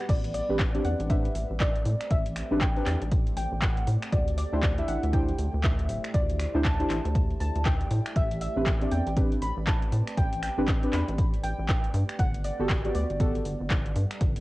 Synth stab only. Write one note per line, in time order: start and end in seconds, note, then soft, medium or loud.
0.49 0.57 C4 medium
0.49 0.57 D4 medium
0.49 0.57 G4 medium
0.49 0.57 B4 medium
0.74 1.07 C4 medium
0.74 1.08 D4 medium
0.74 1.08 G4 medium
0.74 1.08 D5 medium
1.10 1.27 C4 medium
1.10 1.27 D4 medium
1.10 1.27 G4 medium
1.10 1.28 B4 loud
2.51 2.59 C4 medium
2.51 2.59 D4 medium
2.51 2.59 G4 medium
2.51 2.59 B4 loud
2.76 2.90 C4 medium
2.76 2.90 D4 medium
2.76 2.90 G4 medium
2.76 2.90 B4 medium
4.53 4.60 D4 medium
4.53 4.60 E4 medium
4.53 4.61 G4 medium
4.53 4.61 C5 medium
4.78 5.11 D4 medium
4.78 5.11 E4 medium
4.78 5.11 G4 medium
4.78 5.11 E5 medium
5.13 5.31 D4 medium
5.13 5.31 E4 medium
5.13 5.31 G4 medium
5.13 5.31 C5 loud
6.54 6.62 D4 medium
6.54 6.62 E4 medium
6.54 6.62 G4 medium
6.54 6.62 C5 loud
6.79 6.93 D4 medium
6.79 6.93 E4 medium
6.79 6.93 G4 medium
6.79 6.93 C5 medium
8.56 8.64 C4 medium
8.56 8.64 D4 medium
8.56 8.64 G4 medium
8.56 8.64 B4 medium
8.81 9.14 C4 medium
8.81 9.14 D4 medium
8.81 9.14 G4 medium
8.81 9.15 D5 medium
9.16 9.34 C4 loud
9.16 9.34 D4 medium
9.16 9.34 G4 medium
9.16 9.34 B4 loud
10.58 10.65 C4 medium
10.58 10.66 D4 medium
10.58 10.66 G4 medium
10.58 10.66 B4 loud
10.83 10.96 C4 medium
10.83 10.96 D4 medium
10.83 10.97 G4 medium
10.83 10.97 B4 medium
12.59 12.67 B3 medium
12.59 12.67 F#4 medium
12.59 12.67 G4 medium
12.59 12.67 A4 medium
12.84 13.17 B3 medium
12.84 13.18 F#4 medium
12.84 13.18 G4 medium
12.84 13.18 D5 medium
13.20 13.37 B3 medium
13.20 13.37 F#4 medium
13.20 13.38 G4 medium
13.20 13.38 A4 loud